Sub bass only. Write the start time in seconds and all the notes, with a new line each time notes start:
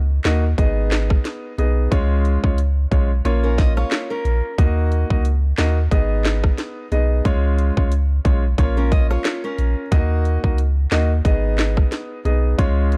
Already playing: C#2
0.25 D#2
0.58 G#1
1.58 B1
1.92 C#2
2.44 C#2
2.91 B1
3.25 A#1
4.25 A#1
4.58 D#2
5.10 C#2
5.58 D#2
5.91 G#1
6.92 B1
7.25 C#2
7.77 C#2
8.25 B1
8.58 A#1
9.59 A#1
9.92 D#2
10.44 C#2
10.92 D#2
11.25 G#1
12.25 B1
12.59 C#2